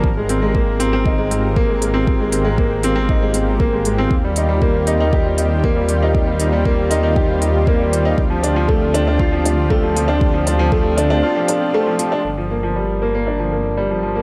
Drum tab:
HH |-x-x-x-x|-x-x-x-x|-x-x-x-x|-x-x-x-x|
BD |o-o-o-o-|o-o-o-o-|o-o-o-o-|o-o-o-o-|

HH |-x-x-x-x|-x-x-x-x|--------|
BD |o-o-o-o-|o-o-----|--------|